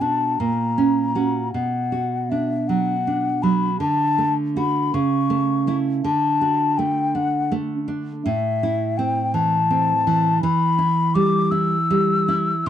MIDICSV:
0, 0, Header, 1, 3, 480
1, 0, Start_track
1, 0, Tempo, 760456
1, 966, Time_signature, 6, 3, 24, 8
1, 2884, Tempo, 737101
1, 5284, Tempo, 722022
1, 7204, Tempo, 758534
1, 8186, End_track
2, 0, Start_track
2, 0, Title_t, "Flute"
2, 0, Program_c, 0, 73
2, 5, Note_on_c, 0, 81, 76
2, 247, Note_on_c, 0, 82, 74
2, 256, Note_off_c, 0, 81, 0
2, 963, Note_off_c, 0, 82, 0
2, 967, Note_on_c, 0, 78, 77
2, 1451, Note_on_c, 0, 76, 65
2, 1460, Note_off_c, 0, 78, 0
2, 1691, Note_on_c, 0, 78, 77
2, 1701, Note_off_c, 0, 76, 0
2, 2162, Note_on_c, 0, 83, 76
2, 2171, Note_off_c, 0, 78, 0
2, 2398, Note_off_c, 0, 83, 0
2, 2402, Note_on_c, 0, 81, 97
2, 2737, Note_off_c, 0, 81, 0
2, 2889, Note_on_c, 0, 83, 87
2, 3126, Note_on_c, 0, 85, 92
2, 3136, Note_off_c, 0, 83, 0
2, 3670, Note_off_c, 0, 85, 0
2, 3846, Note_on_c, 0, 81, 91
2, 4322, Note_on_c, 0, 79, 93
2, 4332, Note_off_c, 0, 81, 0
2, 4566, Note_on_c, 0, 78, 80
2, 4576, Note_off_c, 0, 79, 0
2, 4805, Note_off_c, 0, 78, 0
2, 5280, Note_on_c, 0, 76, 96
2, 5762, Note_on_c, 0, 79, 93
2, 5772, Note_off_c, 0, 76, 0
2, 6007, Note_on_c, 0, 81, 92
2, 6017, Note_off_c, 0, 79, 0
2, 6725, Note_off_c, 0, 81, 0
2, 6728, Note_on_c, 0, 83, 113
2, 7206, Note_on_c, 0, 86, 108
2, 7215, Note_off_c, 0, 83, 0
2, 7436, Note_on_c, 0, 88, 97
2, 7446, Note_off_c, 0, 86, 0
2, 8178, Note_off_c, 0, 88, 0
2, 8186, End_track
3, 0, Start_track
3, 0, Title_t, "Nylon-string guitar"
3, 0, Program_c, 1, 24
3, 0, Note_on_c, 1, 47, 56
3, 7, Note_on_c, 1, 62, 49
3, 9, Note_on_c, 1, 66, 50
3, 225, Note_off_c, 1, 47, 0
3, 227, Note_off_c, 1, 62, 0
3, 227, Note_off_c, 1, 66, 0
3, 252, Note_on_c, 1, 46, 61
3, 491, Note_on_c, 1, 61, 54
3, 719, Note_off_c, 1, 61, 0
3, 726, Note_on_c, 1, 61, 51
3, 730, Note_on_c, 1, 66, 57
3, 942, Note_off_c, 1, 61, 0
3, 944, Note_off_c, 1, 66, 0
3, 946, Note_off_c, 1, 46, 0
3, 974, Note_on_c, 1, 47, 57
3, 1212, Note_on_c, 1, 66, 48
3, 1461, Note_on_c, 1, 62, 55
3, 1602, Note_off_c, 1, 66, 0
3, 1699, Note_on_c, 1, 54, 55
3, 1844, Note_off_c, 1, 62, 0
3, 1939, Note_on_c, 1, 62, 57
3, 2078, Note_off_c, 1, 54, 0
3, 2166, Note_on_c, 1, 54, 56
3, 2313, Note_off_c, 1, 62, 0
3, 2385, Note_off_c, 1, 47, 0
3, 2396, Note_off_c, 1, 54, 0
3, 2399, Note_on_c, 1, 50, 64
3, 2640, Note_on_c, 1, 57, 53
3, 2873, Note_off_c, 1, 57, 0
3, 2880, Note_on_c, 1, 57, 54
3, 2882, Note_on_c, 1, 66, 58
3, 3100, Note_off_c, 1, 50, 0
3, 3100, Note_off_c, 1, 57, 0
3, 3100, Note_off_c, 1, 66, 0
3, 3125, Note_on_c, 1, 49, 71
3, 3360, Note_on_c, 1, 57, 69
3, 3595, Note_off_c, 1, 57, 0
3, 3602, Note_on_c, 1, 57, 56
3, 3606, Note_on_c, 1, 64, 63
3, 3820, Note_off_c, 1, 57, 0
3, 3822, Note_off_c, 1, 64, 0
3, 3823, Note_off_c, 1, 49, 0
3, 3845, Note_on_c, 1, 50, 69
3, 4085, Note_on_c, 1, 66, 60
3, 4328, Note_on_c, 1, 57, 68
3, 4469, Note_off_c, 1, 66, 0
3, 4563, Note_on_c, 1, 62, 60
3, 4710, Note_off_c, 1, 57, 0
3, 4803, Note_on_c, 1, 57, 69
3, 4948, Note_off_c, 1, 62, 0
3, 5039, Note_on_c, 1, 62, 65
3, 5188, Note_off_c, 1, 57, 0
3, 5259, Note_off_c, 1, 50, 0
3, 5282, Note_off_c, 1, 62, 0
3, 5285, Note_on_c, 1, 45, 78
3, 5534, Note_on_c, 1, 64, 62
3, 5770, Note_on_c, 1, 60, 68
3, 5913, Note_off_c, 1, 64, 0
3, 6005, Note_on_c, 1, 52, 69
3, 6155, Note_off_c, 1, 60, 0
3, 6248, Note_on_c, 1, 60, 67
3, 6394, Note_off_c, 1, 52, 0
3, 6490, Note_on_c, 1, 52, 74
3, 6630, Note_off_c, 1, 60, 0
3, 6698, Note_off_c, 1, 45, 0
3, 6723, Note_off_c, 1, 52, 0
3, 6731, Note_on_c, 1, 52, 83
3, 6967, Note_on_c, 1, 64, 60
3, 7210, Note_on_c, 1, 55, 77
3, 7349, Note_off_c, 1, 64, 0
3, 7439, Note_on_c, 1, 64, 66
3, 7587, Note_off_c, 1, 55, 0
3, 7686, Note_on_c, 1, 55, 76
3, 7824, Note_off_c, 1, 64, 0
3, 7926, Note_on_c, 1, 64, 74
3, 8071, Note_off_c, 1, 55, 0
3, 8143, Note_off_c, 1, 52, 0
3, 8166, Note_on_c, 1, 48, 80
3, 8167, Note_off_c, 1, 64, 0
3, 8186, Note_off_c, 1, 48, 0
3, 8186, End_track
0, 0, End_of_file